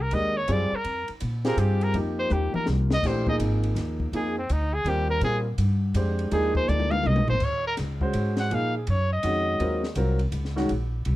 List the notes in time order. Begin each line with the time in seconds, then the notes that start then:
Already playing: C2
0.01 A#4
0.11 D#2 G#3 D4 G4 A#4 D#5, ride
0.37 C#5
0.48 F#2 G3 C4 F4 G#4, hi-hat pedal, ride
0.52 D5
0.72 A#4, muted upright bass stroke
0.84 F2, ride
1.08 muted upright bass stroke, ride
1.20 A#2, hi-hat pedal, ride
1.45 C4 F4 G4 G#4 A#4, snare, ride
1.57 G2 G4, hi-hat pedal, ride
1.81 A#4, ride
1.94 F2 F3 A#3 D#4 G4, ride
2.19 C5
2.30 D#2 G4, hi-hat pedal, high tom
2.54 A#4, muted upright bass stroke, mid tom
2.66 C2, snare
2.91 D#5, snare
3.03 A#1 E3 A3 D4 G4 C5, kick, snare, crash
3.27 F3 A#3 D#4 G#4 D#5, kick
3.39 G#1, hi-hat pedal, ride
3.63 ride
3.75 D#2, snare, hi-hat pedal, ride
4.00 kick
4.12 F2 F3 A#3 D#4 G#4, ride
4.38 C4
4.49 D2 D#4, hi-hat pedal, ride
4.74 G#4
4.84 D#2 G3 C4 F4 A#4, ride
4.88 G4
5.10 A#4
5.21 A#2 G3 C4 F4 G#4 A#4, ride
5.58 G2, hi-hat pedal, ride
5.94 F2 G#3 D4 G4 C5, hi-hat pedal, ride
6.19 ride
6.31 D#2 F3 A#3 D#4 G#4, ride
6.55 C5, kick
6.68 D2 D5, hi-hat pedal, high tom
6.80 high tom
6.91 F5, high tom
7.03 C2 D#5, high tom
7.16 A#1, high tom
7.28 G#1 C5, floor tom
7.40 D#2 C#5, kick, crash
7.67 A#4
7.77 C#2, snare, hi-hat pedal, ride
8.01 G#3 C#4 F#4 C5, kick
8.13 G#2, hi-hat pedal, ride
8.37 F#5, snare, ride
8.50 A#2 F3 A#3 D#4 G#4 F5, ride
8.77 G#4
8.87 F#2 C#5, ride
9.13 D#5
9.23 F2 D#3 G#3 C#4 F#4, hi-hat pedal, ride
9.60 D#2 F#3 C4 F4 A#4, ride
9.84 snare
9.95 C2 F#3 C4 F4 A#4, hi-hat pedal, ride
10.19 ride
10.32 C#2, hi-hat pedal, ride
10.45 snare
10.56 D#3 G#3 C#4 F#4, snare
10.69 A#1, ride
11.05 C2, ride